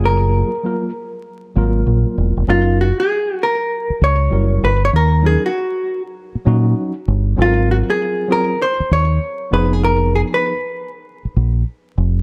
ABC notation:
X:1
M:4/4
L:1/16
Q:"Swing 16ths" 1/4=98
K:F#
V:1 name="Hollow-body jazz guitar"
A12 z4 | E2 F G3 A4 c4 B c | A2 G F4 z8 z | E2 F G3 A2 ^B2 c4 _c _A |
A2 _A _c4 z8 z |]
V:2 name="Tine electric piano"
[F,A,EG]2 z2 [F,A,EA]2 z4 [F,A,EA]6 | [F,CDA]2 z8 z2 [=G,=EFA]2 z2 | z2 [F,CDA]2 z6 [F,CDF]2 z4 | [F,^B,E=A^A]6 [F,B,EG]2 z6 [=F,_C_E_A]2- |
[=F,_C_E_A]4 z12 |]
V:3 name="Fingered electric bass" clef=bass
F,,,3 z6 z G,,,2 A,,, z =E,,, ^E,,, | F,,,3 z6 z C,,2 F,,,2 =G,,,2 | D,,3 z6 z A,,2 z2 =G,,,2 | G,,,3 z6 z D,,2 z2 =F,,,2- |
=F,,,3 z6 z A,,,2 z2 F,,,2 |]